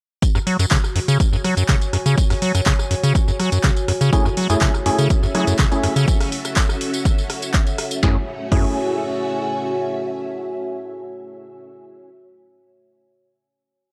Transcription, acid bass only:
0.35 F#2
0.47 F#3
0.59 F#2
0.71 C#3
0.96 F#2
1.08 C#3
1.33 F#2
1.44 F#3
1.57 F#2
1.69 C#3
1.93 F#2
2.06 C#3
2.30 F#2
2.42 F#3
2.55 F#2
2.66 C#3
2.91 F#2
3.03 C#3
3.28 F#2
3.40 F#3
3.52 F#2
3.64 C#3
3.88 F#2
4.01 C#3
4.25 F#2
4.37 F#3
4.50 F#2
4.62 C#3
4.86 F#2
4.99 C#3
5.23 F#2
5.35 F#3
5.47 F#2
5.59 C#3
5.84 F#2
5.96 C#3
8.03 F#2
8.52 F#2

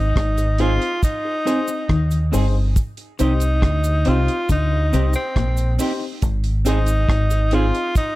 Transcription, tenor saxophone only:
Already playing: D#4
0.60 F4
1.04 D#4
3.22 D#4
4.08 F4
4.52 D#4
5.16 C4
6.69 D#4
7.54 F4
7.97 D#4

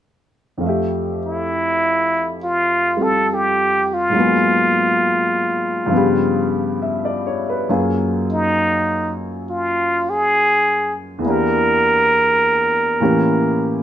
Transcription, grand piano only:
0.58 F2 F3
0.63 A3 E5
0.69 G4
2.97 G3 C4 F4 A4
4.10 G#2 F#3
4.15 A#3 B3
4.20 G#4
5.86 G2 F3
5.92 C#3 B3
5.97 G4
6.82 E5
7.05 D5
7.27 C#5
7.49 B4
7.69 F#2 F#3 A#3 F4 G#4
11.19 E2 E3
11.25 A#3 D4
11.30 G4
13.00 A2 E3 A#3 C#4 G4

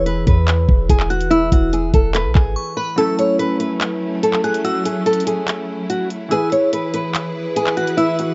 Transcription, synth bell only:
1.10 F#6
1.31 E6
2.56 C#6
2.77 B5
2.98 E6
4.44 F#6
4.65 E6
6.31 E6
7.77 F#6
7.98 E6

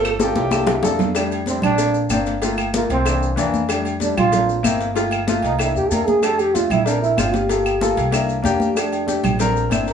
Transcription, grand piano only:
Already playing: A#3 C4 F4 A4
0.19 A#3 C4 F4 A4
0.52 A#3 D4 E4 A4
0.83 A#3 D4 E4 A4
1.15 G3 A3 D4
1.47 G3 A3 D4
1.77 A#3 C4 D4
2.10 A#3 C4 D4
2.42 A3 A#3 F4
2.74 A3 A#3 F4
3.06 E3 A#3 D4
3.36 E3 A#3 D4
3.69 G3 A3 D4
4.00 G3 A3 D4
4.32 A#3 C4 D4
4.63 A#3 C4 E4
4.95 A3 A#3 F4
5.27 A3 A#3 F4
5.60 A#3 D4 E4
5.90 A#3 D4 E4
6.22 A3 D4 G4
6.54 A3 D4 F4
6.86 C4 D4 A#4
7.17 C4 D4 F4
7.49 A#3 F4 A4
7.81 A#3 F4 A4
8.11 A#3 D4 E4
8.42 A#3 D4 G4
8.75 A3 D4 G4
9.07 A3 D4 G4
9.39 C4 D4 A#4
9.70 C4 D4 E4

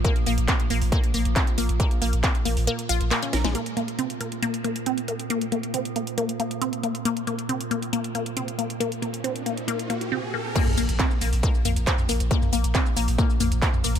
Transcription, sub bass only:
0.27 A#1
0.38 A#1
0.70 A#1
0.82 A#1
1.14 A#1
1.25 A#1
1.58 A#1
1.69 A#1
2.02 A#1
2.13 A#1
2.46 A#1
2.57 A#1
2.89 A#1
3.01 A#1
3.33 A#1
3.44 A#1
10.78 A#1
10.89 A#1
11.21 A#1
11.33 A#1
11.65 A#1
11.76 A#1
12.09 A#1
12.20 A#1
12.53 A#1
12.64 A#1
12.97 A#1
13.08 A#1
13.40 A#1
13.52 A#1
13.84 A#1
13.96 A#1

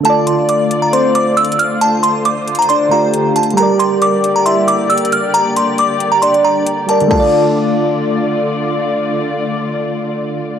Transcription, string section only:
0.05 D3 A3 F4 D5
1.81 C5
3.58 A#3 G4 D5
7.11 D3 A3 F4 D5

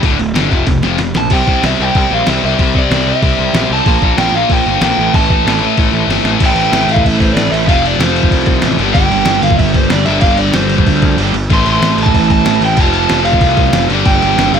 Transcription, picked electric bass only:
0.03 D1
0.19 D1
0.35 G1
0.51 F1
0.68 F1
0.83 F1
0.98 F1
1.16 A#1
1.31 C2
1.47 C2
1.63 C2
1.79 C2
1.95 C2
2.11 A#1
2.28 C2
2.44 C2
2.59 C2
2.91 C2
3.22 C2
3.39 C2
3.54 A#1
3.70 C2
3.86 A#1
4.01 A#1
4.18 A#1
4.33 A#1
4.50 A#1
4.66 G1
4.81 A#1
4.98 A1
5.14 A1
5.45 A1
5.78 A1
5.92 A1
6.08 G1
6.24 A1
6.41 A1
6.54 A1
6.72 A1
6.88 A1
7.05 A1
7.35 A1
7.51 A1
7.67 F1
7.98 F1
8.31 C2
8.63 A1
8.79 G1
8.95 G1
9.11 G1
9.26 G1
9.43 G1
9.59 G1
9.91 G1
10.08 G1
10.22 G1
10.54 G1
10.87 D2
11.17 G1
11.33 G1
11.51 A1
11.65 A1
11.81 A1
11.97 A1
12.15 A1
12.46 A1
12.61 A1
12.77 F1
13.10 F1
13.40 C2
13.73 F1
13.89 G1
14.06 G1
14.23 G1
14.37 G1
14.53 G1

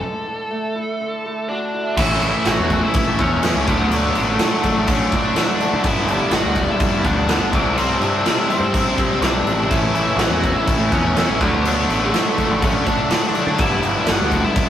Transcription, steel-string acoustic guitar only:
Already playing: A3 A4
0.02 D3
0.27 D3
0.51 A3
0.76 E4
1.01 D3
1.26 A3
1.51 F#4
1.74 E4

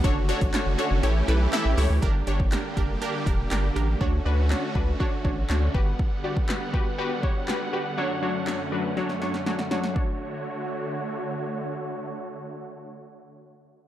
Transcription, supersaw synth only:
Already playing: D3
0.04 A3 C#4 F#4
1.03 E3 G4
2.03 D3 G3 A#3 G4
4.01 D3 A3 C#4 F#4
5.75 G3 B3 F#5
7.98 F#2 A3 C#4
9.96 D3 A3 F#4 C#5

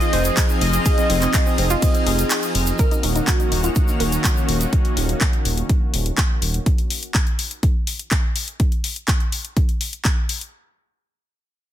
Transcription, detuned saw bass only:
0.13 F1
0.61 F1
1.10 F1
1.58 F1
2.07 F1
2.55 F1
3.03 D#1
3.52 D#1
4.00 D#1
4.49 D#1
4.97 D#1
5.45 D#1
5.94 D#1
6.42 D#1

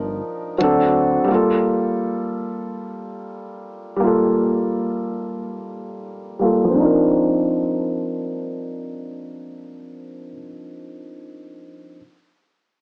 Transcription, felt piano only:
Already playing: F3 D4 D#4 A#4
0.58 F#3 C4 D4
0.63 A4
1.24 G3 A#3
1.31 F4 A4
3.96 G3 A#3
4.04 F4 A4
6.39 G3 A#3 F4
6.45 A4
6.64 F3
6.70 C4
6.75 D4
6.80 D#4
6.85 A#4

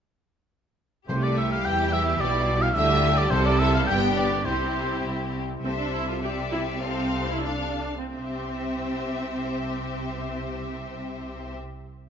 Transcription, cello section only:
1.10 C3
1.67 E3
2.22 B2
2.76 D3
3.32 C3
3.88 G2
4.46 C3
5.05 C2
5.65 C3
8.16 C3

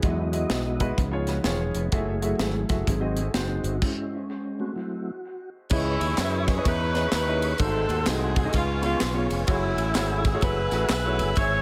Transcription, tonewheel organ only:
0.01 F#3 G#3 B3 E4 F#4 D#5
0.98 F3 B3 D#4
1.93 A3 E4 G#4
2.23 F#3 A3 E4
2.87 F#3 C4 D#4 G#4
3.36 C4 D#4 F#4
3.81 G#3 C#4 E4
4.60 A3 C4 F#4
4.76 F#3 A3 C4 E4
5.71 B4 C#5 D#5 C#6
7.60 F#4 F#5 G#5 C6
8.54 B4 F5 C#6
9.48 G#4 F#5 E6
11.37 C#5 E5

